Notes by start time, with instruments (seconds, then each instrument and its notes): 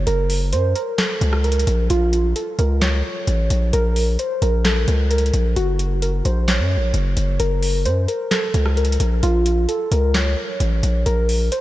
0.07 808-style bass F#1, synth keys A#4, closed hi-hat
0.30 open hi-hat
0.53 808-style bass F#2, synth keys C5, closed hi-hat
0.75 synth keys A#4, closed hi-hat
0.98 synth keys A4, snare, clap, closed hi-hat
1.21 808-style bass C#2, closed hi-hat
1.33 cross-stick
1.44 synth keys A#4, closed hi-hat
1.52 closed hi-hat
1.59 closed hi-hat
1.67 808-style bass A#1, closed hi-hat
1.90 808-style bass A#1, synth keys F4, closed hi-hat
2.13 closed hi-hat
2.36 synth keys A4, closed hi-hat
2.59 808-style bass C#2, synth keys A#4, closed hi-hat
2.82 synth keys C#5, snare, clap, closed hi-hat
3.27 808-style bass A1, closed hi-hat
3.50 808-style bass A#1, closed hi-hat
3.73 808-style bass A#1, synth keys A#4, closed hi-hat
3.96 open hi-hat
4.19 synth keys C5, closed hi-hat
4.42 808-style bass A#1, synth keys A#4, closed hi-hat
4.65 synth keys A4, snare, clap, closed hi-hat
4.88 808-style bass C#2, closed hi-hat
5.11 synth keys A#4, closed hi-hat
5.18 closed hi-hat
5.26 closed hi-hat
5.33 808-style bass A#1, closed hi-hat
5.56 808-style bass F#1, synth keys F#4, closed hi-hat
5.79 closed hi-hat
6.02 synth keys A#4, closed hi-hat
6.25 808-style bass A#1, synth keys C5, closed hi-hat
6.48 synth keys C#5, snare, clap, closed hi-hat
6.59 808-style bass F#2
6.77 808-style bass A#1
6.94 808-style bass F#1, closed hi-hat
7.17 808-style bass F#1, closed hi-hat
7.40 808-style bass F#1, synth keys A#4, closed hi-hat
7.63 open hi-hat
7.85 808-style bass F#2, synth keys C5, closed hi-hat
8.08 synth keys A#4, closed hi-hat
8.31 synth keys A4, snare, clap, closed hi-hat
8.54 808-style bass C#2, closed hi-hat
8.66 cross-stick
8.77 synth keys A#4, closed hi-hat
8.85 closed hi-hat
8.92 closed hi-hat
9.00 808-style bass A#1, closed hi-hat
9.23 808-style bass A#1, synth keys F4, closed hi-hat
9.46 closed hi-hat
9.69 synth keys A4, closed hi-hat
9.92 808-style bass C#2, synth keys A#4, closed hi-hat
10.14 synth keys C#5, snare, clap, closed hi-hat
10.60 808-style bass A1, closed hi-hat
10.83 808-style bass A#1, closed hi-hat
11.06 808-style bass A#1, synth keys A#4, closed hi-hat
11.29 open hi-hat
11.52 synth keys C5, closed hi-hat